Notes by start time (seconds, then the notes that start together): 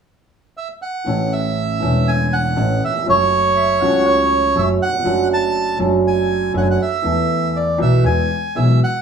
0.57 E5
0.82 F#5
1.04 A1 A2 E3 A3 C#4
1.09 A4
1.33 E5
1.80 E1 E2 E3 A3 C#4
1.84 A4
2.08 G#5
2.33 F#5
2.56 A1 A2 E3 A3 C#4 A4
2.85 D#2 E5
2.94 E2
3.02 F2 F#3
3.06 F#1 F#2 A3 C#4 A4 C#5
3.56 E5
3.80 C#2 C#3 F#3 A3 C#4 F#5
3.84 A4
4.07 C#5
4.55 F#1 F#2 F#3 A3 C#4 A4 E5
4.82 F#5
4.87 D#2
4.93 E2
4.99 F2
5.03 F#1 F#2 F#3 A3 D4 A4
5.34 A5
5.78 F#1 F#2 F#3 A3 D4 A4
6.08 G#5
6.54 F#1 F#2 F#3 A3 D4 A4 F#5
6.62 G#5
6.71 F#5
6.82 E5
7.02 E2 E3 A3 B3 A4
7.56 D5
7.78 B1 B2 E3 A3 B3 A4 E5
8.04 E2 E3 G#3 B3 G#4 G#5
8.55 B1 B2 E3 G#3 B3 G#4 E5
8.84 F#5